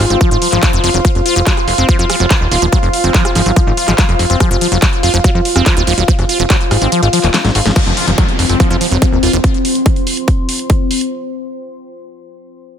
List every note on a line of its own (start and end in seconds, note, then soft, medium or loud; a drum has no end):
0.00 7.75 F4 medium
0.00 7.77 F4 medium
0.00 7.76 C5 medium
0.00 7.76 C6 medium
0.10 0.16 G#1 medium
0.10 0.20 C4 medium
0.10 closed hi-hat medium
0.21 0.30 F3 loud
0.21 kick loud
0.21 closed hi-hat medium
0.31 0.37 G#1 medium
0.31 0.38 F4 medium
0.42 0.48 F3 medium
0.42 open hi-hat loud
0.52 0.58 G#1 medium
0.52 0.62 F3 loud
0.52 clap soft
0.52 closed hi-hat soft
0.63 0.72 F3 loud
0.63 kick loud
0.63 cross-stick soft
0.63 clap loud
0.63 closed hi-hat medium
0.73 0.79 F1 medium
0.73 0.83 F3 medium
0.73 closed hi-hat soft
0.84 0.90 F1 medium
0.84 0.90 F3 loud
0.84 open hi-hat loud
0.94 1.00 F1 medium
0.94 0.98 F#3 medium
0.94 closed hi-hat medium
1.05 1.08 F3 loud
1.05 kick loud
1.05 closed hi-hat medium
1.15 1.21 F1 medium
1.15 closed hi-hat soft
1.26 1.35 F4 medium
1.26 open hi-hat loud
1.36 1.42 F1 medium
1.36 1.40 F3 loud
1.36 closed hi-hat medium
1.47 1.53 F#3 loud
1.47 kick loud
1.47 clap loud
1.47 closed hi-hat medium
1.57 cross-stick soft
1.57 closed hi-hat soft
1.68 1.74 F1 loud
1.68 open hi-hat medium
1.78 1.84 F1 medium
1.78 1.87 C4 medium
1.78 closed hi-hat medium
1.89 1.98 F3 loud
1.89 kick loud
1.89 closed hi-hat medium
1.99 2.05 F2 medium
1.99 2.05 F4 medium
2.10 2.16 F3 loud
2.10 cross-stick medium
2.10 open hi-hat loud
2.20 2.26 F1 medium
2.20 2.26 F#3 medium
2.20 closed hi-hat soft
2.31 2.34 F3 loud
2.31 kick loud
2.31 clap loud
2.31 closed hi-hat medium
2.41 2.47 D#1 medium
2.52 2.58 D#1 loud
2.52 2.61 F4 medium
2.52 open hi-hat medium
2.62 2.68 D#1 medium
2.62 2.66 F3 loud
2.62 closed hi-hat medium
2.72 2.79 F#3 loud
2.72 kick loud
2.72 cross-stick soft
2.72 closed hi-hat medium
2.83 2.89 F1 medium
2.83 closed hi-hat soft
2.93 open hi-hat loud
3.04 3.10 F1 medium
3.04 3.13 C4 medium
3.04 closed hi-hat medium
3.14 3.24 F3 loud
3.14 kick loud
3.14 clap loud
3.14 closed hi-hat medium
3.25 3.31 F4 medium
3.25 cross-stick medium
3.25 closed hi-hat soft
3.35 3.41 G#1 medium
3.35 3.42 F3 loud
3.35 open hi-hat medium
3.46 3.52 G#1 medium
3.46 3.52 F#3 medium
3.46 closed hi-hat medium
3.56 3.60 F3 loud
3.56 kick loud
3.56 closed hi-hat medium
3.67 3.73 G#1 medium
3.77 3.87 F4 medium
3.77 open hi-hat loud
3.88 3.94 G#1 medium
3.88 3.92 F3 loud
3.88 cross-stick soft
3.88 clap soft
3.88 closed hi-hat soft
3.98 4.05 F#3 loud
3.98 kick loud
3.98 clap loud
3.98 closed hi-hat medium
4.09 4.15 F1 medium
4.09 closed hi-hat soft
4.19 4.25 F1 loud
4.19 open hi-hat medium
4.30 4.36 F1 medium
4.30 4.39 C4 medium
4.30 closed hi-hat medium
4.40 4.50 F3 loud
4.40 kick loud
4.40 cross-stick medium
4.40 closed hi-hat medium
4.51 4.57 F1 medium
4.51 4.57 F4 medium
4.51 closed hi-hat soft
4.61 4.68 F3 loud
4.61 open hi-hat loud
4.72 4.78 F1 medium
4.72 4.78 F#3 medium
4.72 closed hi-hat medium
4.82 4.86 F3 loud
4.82 kick loud
4.82 clap loud
4.82 closed hi-hat medium
4.93 closed hi-hat soft
5.03 5.09 F1 medium
5.03 5.13 F4 medium
5.03 open hi-hat medium
5.14 5.20 F1 medium
5.14 5.17 F3 loud
5.14 closed hi-hat medium
5.24 5.30 F#3 loud
5.24 kick loud
5.24 closed hi-hat medium
5.35 5.41 F2 medium
5.45 open hi-hat loud
5.56 5.62 F1 medium
5.56 5.65 C4 medium
5.56 cross-stick medium
5.56 closed hi-hat medium
5.66 5.76 F3 loud
5.66 kick loud
5.66 clap loud
5.66 closed hi-hat medium
5.77 5.83 D#1 medium
5.77 5.83 F4 medium
5.87 5.93 D#1 medium
5.87 5.93 F3 loud
5.87 open hi-hat medium
5.98 6.04 D#1 medium
5.98 6.04 F#3 medium
5.98 closed hi-hat medium
6.08 6.12 F3 loud
6.08 kick loud
6.08 closed hi-hat medium
6.19 6.25 F1 medium
6.19 cross-stick soft
6.19 closed hi-hat soft
6.29 6.39 F4 medium
6.29 open hi-hat loud
6.40 6.46 F1 medium
6.40 6.43 F3 loud
6.40 closed hi-hat medium
6.50 6.56 F#3 loud
6.50 kick loud
6.50 clap loud
6.50 closed hi-hat medium
6.61 closed hi-hat soft
6.71 6.77 G#1 medium
6.71 cross-stick medium
6.71 open hi-hat medium
6.82 6.88 G#1 medium
6.82 6.91 C4 medium
6.82 closed hi-hat medium
6.92 7.01 F3 loud
6.92 closed hi-hat medium
7.03 7.09 G#1 medium
7.03 7.09 F4 medium
7.03 closed hi-hat soft
7.13 7.19 F3 loud
7.13 open hi-hat loud
7.24 7.30 D#1 medium
7.24 7.27 F3 medium
7.24 clap soft
7.24 closed hi-hat medium
7.34 7.38 F3 loud
7.34 snare medium
7.34 clap loud
7.34 closed hi-hat medium
7.45 7.51 G#1 medium
7.45 7.51 F#3 medium
7.45 snare medium
7.45 closed hi-hat soft
7.55 7.61 G#1 loud
7.55 7.59 F#4 medium
7.55 open hi-hat medium
7.66 7.72 G#1 medium
7.66 7.72 F3 medium
7.66 snare medium
7.66 closed hi-hat medium
7.76 7.80 F3 loud
7.76 11.13 C4 medium
7.76 11.12 F4 medium
7.76 kick loud
7.76 closed hi-hat medium
7.76 crash medium
7.76 downlifter medium
7.87 7.93 F1 medium
7.87 closed hi-hat soft
7.95 8.06 F4 medium
7.95 11.12 C5 medium
7.95 open hi-hat loud
8.07 8.14 F1 medium
8.07 8.11 F3 loud
8.07 closed hi-hat medium
8.18 8.24 F#3 loud
8.18 kick loud
8.18 closed hi-hat medium
8.29 closed hi-hat soft
8.39 8.45 F1 medium
8.39 open hi-hat medium
8.49 8.56 F1 medium
8.49 8.59 C4 medium
8.49 closed hi-hat medium
8.60 8.69 F3 loud
8.60 kick loud
8.60 closed hi-hat medium
8.67 8.76 F2 medium
8.67 8.77 F4 medium
8.67 11.12 C6 medium
8.81 8.87 F3 loud
8.81 open hi-hat loud
8.91 8.97 F1 medium
8.91 8.98 F#3 medium
8.91 closed hi-hat soft
9.02 9.06 F3 loud
9.02 kick loud
9.02 closed hi-hat medium
9.12 9.18 D#1 medium
9.23 9.29 D#1 medium
9.23 9.32 F4 medium
9.23 open hi-hat loud
9.33 9.39 D#1 medium
9.33 9.37 F3 loud
9.33 closed hi-hat medium
9.44 kick loud
9.44 closed hi-hat medium
9.54 closed hi-hat soft
9.65 open hi-hat loud
9.75 closed hi-hat medium
9.86 kick loud
9.86 closed hi-hat medium
9.96 closed hi-hat soft
10.07 open hi-hat loud
10.17 closed hi-hat medium
10.28 kick loud
10.28 closed hi-hat medium
10.49 open hi-hat loud
10.59 closed hi-hat soft
10.70 kick loud
10.70 closed hi-hat medium
10.91 open hi-hat medium
11.01 closed hi-hat medium